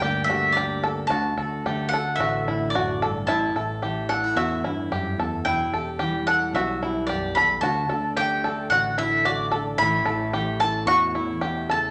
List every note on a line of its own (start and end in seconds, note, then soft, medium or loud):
0.00 1.06 D2 loud
0.00 1.07 G2 medium
0.00 0.27 D3 medium
0.00 0.56 A#3 medium
0.00 0.83 D4 medium
0.00 0.27 G4 medium
0.00 0.29 G4 medium
0.00 0.24 G5 medium
0.24 1.07 D3 medium
0.24 0.55 E5 medium
0.29 0.56 F#4 medium
0.29 1.07 G4 medium
0.52 0.92 D5 medium
0.57 1.08 A#3 medium
0.57 0.83 G4 medium
0.84 1.08 D4 soft
0.84 1.10 A4 medium
1.07 1.36 D2 loud
1.07 2.74 D2 medium
1.07 1.37 F#4 medium
1.07 1.87 A5 medium
1.37 2.15 D2 medium
1.37 1.92 F#4 medium
1.37 1.64 A4 medium
1.66 3.29 D3 medium
1.66 3.25 A3 medium
1.66 1.92 G4 medium
1.89 2.19 F#5 medium
1.93 2.46 F#4 medium
1.93 2.20 A4 medium
2.16 3.24 A1 loud
2.16 2.68 E5 medium
2.20 3.26 D4 medium
2.20 2.47 F#4 medium
2.46 3.28 A2 medium
2.46 2.74 E4 medium
2.46 3.25 F#4 medium
2.70 3.10 D5 medium
2.74 3.01 F#2 medium
2.74 3.01 F#4 medium
3.02 3.29 G2 medium
3.02 3.28 A4 medium
3.26 3.53 A1 loud
3.26 4.65 A2 medium
3.26 3.55 E4 medium
3.26 4.09 A5 medium
3.54 4.33 A1 medium
3.54 4.09 E4 medium
3.54 3.82 A4 medium
3.82 5.42 E3 medium
3.82 5.43 A3 medium
3.82 4.09 G4 medium
4.09 4.24 D4 medium
4.09 4.36 A4 medium
4.09 4.38 F#5 medium
4.24 4.64 E4 medium
4.36 4.62 E2 medium
4.36 5.42 C#4 medium
4.36 4.64 F#4 medium
4.36 5.14 E5 medium
4.64 4.91 E2 medium
4.64 4.88 G2 medium
4.64 4.91 E4 medium
4.64 5.43 E4 medium
4.91 5.16 F#2 medium
4.91 5.18 G2 medium
4.91 5.18 G4 medium
5.18 5.43 E2 medium
5.18 5.45 F#2 medium
5.18 5.46 A4 medium
5.45 5.71 E1 medium
5.45 7.08 E2 medium
5.45 5.72 E4 medium
5.45 6.26 G5 medium
5.72 6.50 E1 medium
5.72 6.26 G4 medium
5.72 6.00 A4 medium
5.99 7.60 E3 medium
5.99 7.64 G3 medium
5.99 6.26 G4 medium
6.27 6.81 G4 medium
6.27 6.54 A4 medium
6.27 6.52 F#5 medium
6.53 7.58 B1 loud
6.53 7.60 B3 medium
6.53 6.81 F#4 medium
6.53 7.06 E5 medium
6.82 7.60 B2 medium
6.82 7.09 E4 medium
6.82 7.60 G4 medium
7.07 7.36 F#2 medium
7.07 7.35 G4 medium
7.07 7.36 D5 medium
7.35 7.62 E2 medium
7.35 7.63 A4 medium
7.35 7.61 B5 medium
7.61 7.88 D2 loud
7.61 9.79 D2 medium
7.61 7.89 F#4 medium
7.61 8.12 A5 medium
7.88 8.66 D2 medium
7.88 8.44 D4 medium
7.88 8.16 A4 medium
8.17 9.79 D3 medium
8.17 9.27 A3 medium
8.17 8.43 G4 medium
8.17 8.69 G5 medium
8.44 8.70 D4 medium
8.44 8.71 A4 medium
8.70 9.75 A1 medium
8.70 8.97 D4 medium
8.70 8.98 F#4 medium
8.70 8.98 F#5 medium
8.98 9.79 A2 medium
8.98 9.52 D4 medium
8.98 9.24 E4 medium
8.98 9.26 E5 medium
9.25 9.81 A3 medium
9.25 9.51 F#4 medium
9.25 9.63 D5 medium
9.52 9.76 D4 medium
9.52 9.78 A4 medium
9.78 10.04 A1 loud
9.78 11.42 A2 medium
9.78 10.33 E3 medium
9.78 10.05 E4 medium
9.78 10.60 B5 loud
9.82 10.34 A3 medium
9.82 10.87 C#4 medium
9.82 10.06 E4 medium
10.05 10.83 A1 medium
10.05 10.61 E4 medium
10.05 10.32 A4 medium
10.33 11.91 E3 medium
10.33 11.91 A3 medium
10.33 10.60 G4 medium
10.60 11.15 E4 medium
10.60 10.87 A4 medium
10.60 10.87 A5 medium
10.86 11.91 E2 loud
10.86 11.91 C#4 medium
10.86 11.14 F#4 medium
10.86 11.71 C#6 loud
11.15 11.91 E2 medium
11.15 11.41 E4 medium
11.15 11.91 E4 medium
11.41 11.69 B2 medium
11.41 11.68 G4 medium
11.69 11.91 C#3 medium
11.69 11.91 A4 medium
11.69 11.91 A5 medium